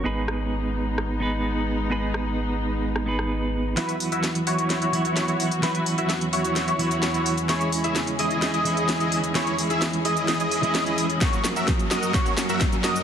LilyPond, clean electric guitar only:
\new Staff \with { instrumentName = "Clean electric guitar" } { \time 4/4 \key e \lydian \tempo 4 = 129 <b dis' gis' b'>2~ <b dis' gis' b'>8 <b dis' gis' b'>4. | <b dis' gis' b'>2~ <b dis' gis' b'>8 <b dis' gis' b'>4. | <e fis b e'>2~ <e fis b e'>8 <e fis b e'>4. | <e fis b e'>2~ <e fis b e'>8 <e fis b e'>4. |
<e gis cis' e'>2~ <e gis cis' e'>8 <e gis cis' e'>4. | <e gis cis' e'>2~ <e gis cis' e'>8 r16 <e gis cis' e'>4~ <e gis cis' e'>16 | <fis ais cis' fis'>2 <fis ais cis' fis'>2 | }